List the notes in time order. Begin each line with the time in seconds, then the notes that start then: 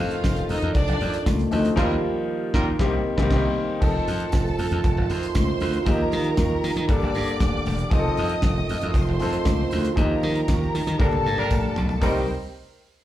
Already playing: D#3 F3 A3 C4 F4 A4
0.00 F2, tambourine
0.11 F4 F5, closed hi-hat
0.24 F1, kick, snare, tambourine, high conga
0.36 closed hi-hat
0.49 F2 D#4 D#5, open hi-hat, tambourine, muted conga
0.62 F2, closed hi-hat, low conga
0.74 F1 D4 D5, kick, closed hi-hat, tambourine
0.88 F1, closed hi-hat
1.01 F2, open hi-hat, tambourine, muted conga
1.14 closed hi-hat, tambourine
1.26 C#2, kick, snare, tambourine, high conga
1.39 closed hi-hat, high conga
1.51 D2 D#3 F3 A3 C4 D#4, open hi-hat, tambourine, high conga
1.65 closed hi-hat, tambourine
1.76 D#2 D#3 F3 G3 A#3 F4 G4 A#4, kick, snare, crash
2.53 D#2 G3 F4 A#4, kick, snare
2.79 C2 G3 A#3 C4 G4, kick, snare
2.84 D#3
3.17 C2 G3 A#3 C4 G4, kick, snare
3.23 D#3
3.30 C2 G3 A#3 C4 G4, kick, snare, crash
3.35 D#3
3.80 F1 D#3 F3 A3 C4 D#4 F4 A4 A5, kick, crash, tambourine, muted conga
4.08 F2, open hi-hat, tambourine
4.20 closed hi-hat
4.32 F1, kick, snare, closed hi-hat, tambourine, high conga
4.47 tambourine
4.59 F2, open hi-hat, tambourine, muted conga
4.71 F2, closed hi-hat, low conga
4.84 F1, kick, closed hi-hat, tambourine
4.97 F1
5.10 F2 C5 C6, open hi-hat, tambourine
5.22 closed hi-hat, tambourine
5.35 C#2, kick, snare, closed hi-hat, tambourine, high conga
5.60 D2, open hi-hat, tambourine, high conga
5.74 closed hi-hat, tambourine
5.86 D#2 F3 G3 A#3 D#4 G4 A#4 A#5, kick, closed hi-hat, tambourine, muted conga
6.12 D#3, open hi-hat, tambourine
6.24 closed hi-hat
6.37 D#2, kick, snare, closed hi-hat, tambourine, high conga
6.64 D#3, open hi-hat, tambourine, muted conga
6.76 D#3, closed hi-hat, low conga
6.88 G1 D3 G3 A#3 D4 G4 A4 D5 D6, kick, closed hi-hat, tambourine
7.00 G1, tambourine
7.15 G2, open hi-hat, tambourine
7.28 closed hi-hat, tambourine
7.40 D#1, kick, snare, closed hi-hat, tambourine, high conga
7.65 E1, open hi-hat, tambourine, high conga
7.79 closed hi-hat
7.90 F1 D#3 F3 A3 C4 D#4 F4 G#4 D#5 D#6, kick, closed hi-hat, tambourine, muted conga
7.99 A4
8.17 F2, open hi-hat, tambourine
8.29 closed hi-hat
8.42 F1, kick, snare, closed hi-hat, tambourine, high conga
8.58 tambourine
8.69 F2, open hi-hat, tambourine, muted conga
8.81 F2, closed hi-hat, low conga
8.94 F1 C5 C6, kick, closed hi-hat, tambourine
9.06 F1, tambourine
9.20 F2 F3 C4 D#4 A4, open hi-hat, tambourine, muted conga
9.33 closed hi-hat
9.45 C#2, kick, snare, closed hi-hat, tambourine, high conga
9.71 D2, open hi-hat, tambourine, high conga
9.85 closed hi-hat, tambourine
9.96 D#2 F3 G3 A#3 D#4 G4 A#4 A#5, kick, closed hi-hat, tambourine, muted conga
10.23 D#3, open hi-hat, tambourine
10.36 closed hi-hat
10.48 D#2, kick, snare, closed hi-hat, tambourine, high conga
10.63 tambourine
10.75 D#3, open hi-hat, tambourine, muted conga
10.87 D#3, closed hi-hat, low conga
10.98 G1 D3 G3 A#3 D4 G4 A4 A#4 A5, kick, high tom, tambourine
11.11 high tom, tambourine
11.26 G2, tambourine, muted conga
11.38 G3 D4 A#4, mid tom, tambourine
11.50 A#1, kick, mid tom, tambourine, high conga
11.76 B1, floor tom, tambourine, high conga
11.89 floor tom, tambourine
12.02 C2 D#3 G3 A#3 C4 D#4 G4 A#4 C5 G5, kick, floor tom, open hi-hat, tambourine, muted conga